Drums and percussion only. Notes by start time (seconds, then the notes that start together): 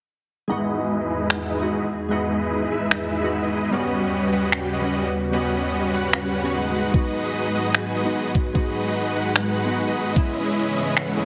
1.30 finger snap
2.91 finger snap
4.52 finger snap
6.13 finger snap
6.94 kick
7.75 finger snap
8.35 kick
8.55 kick
9.36 finger snap
10.16 kick
10.97 finger snap